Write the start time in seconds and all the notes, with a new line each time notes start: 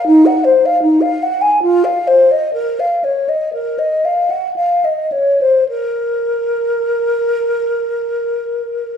0.07 D#4
0.26 F#5
0.44 C5
0.66 F5
0.83 D#4
1.01 F5
1.23 F#5
1.42 G#5
1.63 F4
1.85 F5
2.08 C5
2.32 D#5
2.54 A#4
2.80 F5
3.04 C#5
3.29 D#5
3.54 A#4
3.79 D#5
4.05 F5
4.30 F#5
4.56 F5
4.85 D#5
5.12 C#5
5.41 C5
5.69 A#4